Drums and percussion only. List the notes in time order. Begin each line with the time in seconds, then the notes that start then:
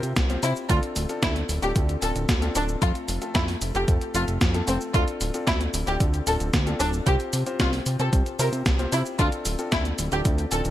0.03 closed hi-hat, cabasa
0.16 kick, snare, closed hi-hat, cabasa
0.30 closed hi-hat, cabasa
0.43 open hi-hat, cabasa
0.56 cabasa
0.70 kick, closed hi-hat, cabasa
0.83 closed hi-hat, cabasa
0.96 open hi-hat, cabasa
1.09 closed hi-hat, cabasa
1.23 kick, snare, closed hi-hat, cabasa
1.36 closed hi-hat, cabasa
1.49 open hi-hat, cabasa
1.63 closed hi-hat, cabasa
1.76 kick, closed hi-hat, cabasa
1.89 closed hi-hat, cabasa
2.02 open hi-hat, cabasa
2.16 closed hi-hat, cabasa
2.29 kick, snare, closed hi-hat, cabasa
2.42 closed hi-hat, cabasa
2.55 open hi-hat, cabasa
2.69 cabasa
2.82 kick, closed hi-hat, cabasa
2.95 closed hi-hat, cabasa
3.08 open hi-hat, cabasa
3.22 closed hi-hat, cabasa
3.35 kick, snare, closed hi-hat, cabasa
3.48 open hi-hat, cabasa
3.62 open hi-hat, cabasa
3.75 closed hi-hat, cabasa
3.88 kick, closed hi-hat, cabasa
4.01 closed hi-hat, cabasa
4.15 open hi-hat, cabasa
4.28 closed hi-hat, cabasa
4.41 kick, snare, closed hi-hat, cabasa
4.54 closed hi-hat, cabasa
4.68 open hi-hat, cabasa
4.81 cabasa
4.94 kick, closed hi-hat, cabasa
5.08 closed hi-hat, cabasa
5.21 open hi-hat, cabasa
5.34 closed hi-hat, cabasa
5.47 kick, snare, closed hi-hat, cabasa
5.61 closed hi-hat, cabasa
5.74 open hi-hat, cabasa
5.87 closed hi-hat, cabasa
6.00 kick, closed hi-hat, cabasa
6.14 closed hi-hat, cabasa
6.27 open hi-hat, cabasa
6.40 closed hi-hat, cabasa
6.54 kick, snare, closed hi-hat, cabasa
6.67 closed hi-hat, cabasa
6.80 open hi-hat, cabasa
6.93 cabasa
7.07 kick, closed hi-hat, cabasa
7.20 closed hi-hat, cabasa
7.33 open hi-hat, cabasa
7.46 closed hi-hat, cabasa
7.60 kick, snare, closed hi-hat, cabasa
7.73 open hi-hat, cabasa
7.86 open hi-hat, cabasa
8.00 closed hi-hat, cabasa
8.13 kick, closed hi-hat, cabasa
8.26 closed hi-hat, cabasa
8.39 open hi-hat, cabasa
8.53 closed hi-hat, cabasa
8.66 kick, snare, closed hi-hat, cabasa
8.79 closed hi-hat, cabasa
8.92 open hi-hat, cabasa
9.06 cabasa
9.19 kick, closed hi-hat, cabasa
9.32 closed hi-hat, cabasa
9.45 open hi-hat, cabasa
9.59 closed hi-hat, cabasa
9.72 kick, snare, closed hi-hat, cabasa
9.85 closed hi-hat, cabasa
9.99 open hi-hat, cabasa
10.12 closed hi-hat, cabasa
10.25 kick, closed hi-hat, cabasa
10.38 closed hi-hat, cabasa
10.52 open hi-hat, cabasa
10.65 closed hi-hat, cabasa